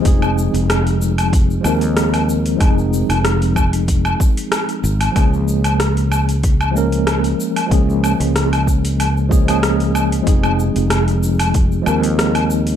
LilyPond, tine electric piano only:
\new Staff \with { instrumentName = "Tine electric piano" } { \time 4/4 \key f \phrygian \tempo 4 = 94 <f aes c' ees' aes'>2~ <f aes c' ees' aes'>8 <f aes c' ees' bes'>4. | <f aes c' ees' aes'>2~ <f aes c' ees' aes'>8 r4. | <f aes bes des' aes'>2~ <f aes bes des' aes'>8 <f aes bes des' bes'>4. | <f aes bes des' aes'>2~ <f aes bes des' aes'>8 <f aes bes des' aes'>16 <f aes bes des' aes'>4~ <f aes bes des' aes'>16 |
<f aes c' ees' aes'>2~ <f aes c' ees' aes'>8 <f aes c' ees' bes'>4. | }